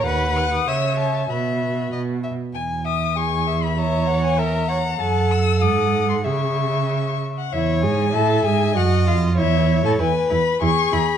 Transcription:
<<
  \new Staff \with { instrumentName = "Violin" } { \time 2/4 \key fis \dorian \tempo 4 = 97 b''8 fis'''16 dis'''16 e'''8 a''8 | b''4 r4 | gis''8 dis'''8 cis'''8. b''16 | ais''8. gis''16 ais''4 |
\key cis \minor a''8 e'''8 dis'''8. bis''16 | cis'''4. r16 fis''16 | e''8 gis''8 a''8 gis''8 | fis''8 eis''8 e''8. a''16 |
gis''8 b''8 cis'''8 b''8 | }
  \new Staff \with { instrumentName = "Violin" } { \time 2/4 \key fis \dorian fis''4 e''4 | e''4 dis''8 e''8 | gis''8 e''8 gis''8 e''8 | e''8 fis''8 e''8 fis''8 |
\key cis \minor fis''4 fis''4 | e''4. r8 | cis''4 e''4 | dis''4 cis''4 |
b'4 gis'4 | }
  \new Staff \with { instrumentName = "Viola" } { \time 2/4 \key fis \dorian b'4 cis''4 | fis'4. r8 | r4 gis'4 | cis''4 ais'8 cis''8 |
\key cis \minor a'2 | gis'4. r8 | e'8 gis'8 a'8 gis'8 | fis'8 eis'8 e'8. a'16 |
e'8 e'8 e'8 e'8 | }
  \new Staff \with { instrumentName = "Cello" } { \clef bass \time 2/4 \key fis \dorian dis,4 cis4 | b,4 b,8 r8 | e,2~ | e,2 |
\key cis \minor fis,4 gis,4 | cis4. r8 | e,8 gis,8 a,8 gis,8 | fis,8 eis,8 e,8. a,16 |
e,8 e,8 e,8 e,8 | }
>>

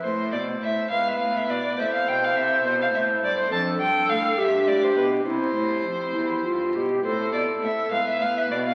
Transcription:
<<
  \new Staff \with { instrumentName = "Violin" } { \time 6/8 \key a \minor \tempo 4. = 69 c''8 d''8 e''8 f''16 e''16 f''16 e''16 d''8 | e''16 f''16 g''16 f''16 e''8 c''16 f''16 e''8 d''16 c''16 | \key c \major a''8 g''8 f''8 e''8 d''16 c''16 b'8 | c''2~ c''8 r8 |
\key a \minor c''8 d''8 e''8 f''16 e''16 f''16 e''16 d''16 f''16 | }
  \new Staff \with { instrumentName = "Flute" } { \time 6/8 \key a \minor r4. b'4. | c''2. | \key c \major a'4. g'4. | e'4. e'8 f'8 g'8 |
\key a \minor a'4. b'4. | }
  \new Staff \with { instrumentName = "Pipe organ" } { \time 6/8 \key a \minor <a e' c''>4. <b e' b'>4. | <c' e' a'>2. | \key c \major <c' d' a'>4. <d' g'>4. | <e' g'>2. |
\key a \minor <c' e' a'>4. <b e' b'>4. | }
  \new Staff \with { instrumentName = "Pipe organ" } { \clef bass \time 6/8 \key a \minor a,8 b,8 a,8 gis,8 a,8 b,8 | a,8 b,8 c8 b,8 a,8 g,8 | \key c \major f,8 g,8 a,8 g,8 a,8 b,8 | c8 a,8 f,8 e,8 g,8 b,8 |
\key a \minor a,8 b,8 a,8 gis,8 a,8 b,8 | }
  \new Staff \with { instrumentName = "Cello" } { \clef bass \time 6/8 \key a \minor a,8 b,8 a,8 gis,8 a,8 b,8 | a,8 b,8 c8 b,8 a,8 g,8 | \key c \major f,8 g,8 a,8 g,8 a,8 b,8 | c8 a,8 f,8 e,8 g,8 b,8 |
\key a \minor a,8 b,8 a,8 gis,8 a,8 b,8 | }
>>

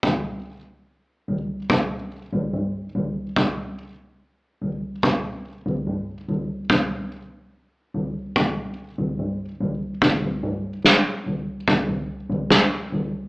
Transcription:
\new DrumStaff \with { instrumentName = "Drums" } \drummode { \time 4/4 \tempo 4 = 72 <bd tomfh>4 r8 tomfh8 <bd tomfh>8. tomfh16 toml8 tomfh8 | <bd tomfh>4 r8 tomfh8 <bd tomfh>8. tomfh16 toml8 tomfh8 | <bd tomfh>4 r8 tomfh8 <bd tomfh>8. tomfh16 toml8 tomfh8 | <bd tomfh>16 tomfh16 toml8 sn8 tomfh8 <bd tomfh>16 tomfh8 tomfh16 <bd sn>8 tomfh8 | }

